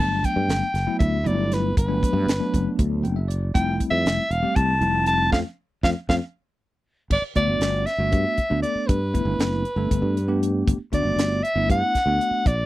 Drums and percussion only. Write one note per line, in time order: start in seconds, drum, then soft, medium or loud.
0.24 kick medium
0.24 closed hi-hat medium
0.49 snare medium
0.49 closed hi-hat medium
0.75 snare soft
0.75 closed hi-hat medium
1.00 kick medium
1.00 closed hi-hat medium
1.26 closed hi-hat medium
1.52 snare soft
1.52 closed hi-hat medium
1.77 kick loud
1.77 closed hi-hat medium
2.03 kick medium
2.03 closed hi-hat medium
2.29 snare medium
2.29 closed hi-hat medium
2.54 kick medium
2.54 closed hi-hat medium
2.79 kick medium
2.79 closed hi-hat medium
3.05 closed hi-hat medium
3.31 closed hi-hat medium
3.55 kick loud
3.55 closed hi-hat medium
3.80 kick medium
3.80 closed hi-hat medium
4.06 snare medium
4.06 closed hi-hat medium
4.31 closed hi-hat medium
4.56 kick medium
4.56 closed hi-hat medium
4.82 closed hi-hat soft
5.06 closed hi-hat medium
5.32 kick medium
5.32 snare medium
5.83 kick medium
5.83 snare medium
6.09 kick medium
6.09 snare medium
7.11 kick medium
7.11 crash medium
7.36 kick medium
7.36 closed hi-hat medium
7.61 snare medium
7.61 closed hi-hat medium
7.87 snare soft
7.87 closed hi-hat soft
8.12 kick medium
8.12 closed hi-hat medium
8.38 kick medium
8.38 closed hi-hat medium
8.63 closed hi-hat medium
8.89 kick loud
8.89 closed hi-hat medium
9.15 kick medium
9.15 closed hi-hat medium
9.40 snare medium
9.40 closed hi-hat medium
9.65 closed hi-hat soft
9.91 kick medium
9.91 closed hi-hat medium
10.17 closed hi-hat medium
10.43 closed hi-hat medium
10.68 kick loud
10.68 closed hi-hat medium
10.93 kick medium
10.93 closed hi-hat medium
11.19 snare medium
11.19 closed hi-hat medium
11.45 closed hi-hat medium
11.70 kick medium
11.70 closed hi-hat medium
11.95 kick medium
11.95 snare soft
11.95 closed hi-hat medium
12.21 closed hi-hat medium
12.46 kick loud
12.46 closed hi-hat medium